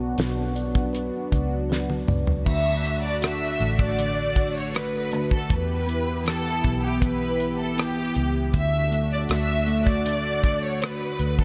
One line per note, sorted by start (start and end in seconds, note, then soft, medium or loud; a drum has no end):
0.00 0.14 B1 medium
0.00 2.43 F#3 medium
0.00 2.42 B3 medium
0.00 2.43 B3 medium
0.00 2.43 D4 medium
0.00 1.28 F#4 soft
0.00 2.43 F#4 medium
0.18 1.09 B1 medium
0.18 0.92 B4 soft
0.18 snare medium
0.18 closed hi-hat medium
0.55 1.31 D5 soft
0.55 closed hi-hat medium
0.75 kick medium
0.75 closed hi-hat soft
0.93 1.69 B4 medium
0.93 closed hi-hat medium
1.32 2.04 C#2 medium
1.32 2.06 D5 soft
1.32 kick medium
1.32 closed hi-hat medium
1.70 2.44 B4 soft
1.70 snare soft
1.90 high tom soft
2.08 2.44 C#2 medium
2.08 2.45 D5 soft
2.08 mid tom medium
2.27 floor tom medium
2.46 3.56 D2 medium
2.46 3.97 D3 medium
2.46 5.47 A3 medium
2.46 5.47 D4 medium
2.46 5.47 F#4 medium
2.46 3.00 E5 medium
2.46 kick medium
2.46 crash medium
2.84 3.59 A3 soft
2.84 closed hi-hat soft
3.04 3.23 D5 medium
3.22 4.70 F#4 soft
3.22 3.76 E5 medium
3.22 cross-stick medium
3.22 closed hi-hat medium
3.60 5.13 A1 medium
3.60 5.08 A3 soft
3.60 closed hi-hat soft
3.79 4.53 D5 medium
3.79 kick medium
3.79 closed hi-hat soft
3.98 5.46 D3 soft
3.98 closed hi-hat medium
4.36 kick medium
4.36 closed hi-hat medium
4.57 4.75 C#5 medium
4.74 5.48 F#4 soft
4.74 5.28 B4 medium
4.74 cross-stick medium
4.74 closed hi-hat medium
5.12 5.48 D2 medium
5.12 closed hi-hat medium
5.31 5.51 A4 medium
5.31 kick medium
5.50 6.60 E2 medium
5.50 6.24 E3 medium
5.50 8.51 B3 medium
5.50 8.51 E4 medium
5.50 8.51 G4 medium
5.50 6.27 B4 medium
5.50 kick medium
5.50 closed hi-hat medium
5.87 6.63 B3 soft
5.87 closed hi-hat medium
6.25 7.01 E3 soft
6.25 6.80 A4 medium
6.25 cross-stick medium
6.25 closed hi-hat medium
6.64 8.12 B1 medium
6.64 7.77 B3 soft
6.64 kick medium
6.64 closed hi-hat medium
6.85 7.03 G4 medium
7.02 8.50 E3 soft
7.02 7.56 B4 medium
7.02 kick medium
7.02 closed hi-hat medium
7.40 closed hi-hat medium
7.60 7.78 A4 medium
7.78 8.52 B3 soft
7.78 8.36 G4 medium
7.78 cross-stick medium
7.78 closed hi-hat medium
8.15 8.51 C#2 medium
8.15 closed hi-hat medium
8.53 9.26 D2 medium
8.53 10.05 D3 medium
8.53 11.44 A3 medium
8.53 11.44 D4 medium
8.53 11.44 F#4 medium
8.53 9.08 E5 medium
8.53 kick medium
8.53 closed hi-hat medium
8.91 9.66 A3 soft
8.91 closed hi-hat medium
9.12 9.20 D5 medium
9.29 11.16 D2 medium
9.29 10.78 F#4 soft
9.29 9.84 E5 medium
9.29 cross-stick medium
9.29 closed hi-hat medium
9.67 11.16 A3 soft
9.67 closed hi-hat soft
9.86 10.63 D5 medium
9.86 kick medium
9.86 closed hi-hat soft
10.06 11.44 D3 medium
10.06 closed hi-hat medium
10.44 kick medium
10.44 closed hi-hat medium
10.64 10.82 C#5 medium
10.82 11.44 F#4 soft
10.82 11.40 B4 medium
10.82 cross-stick medium
10.82 closed hi-hat medium
11.19 11.44 D2 medium
11.19 closed hi-hat medium
11.39 11.44 A4 medium
11.39 kick medium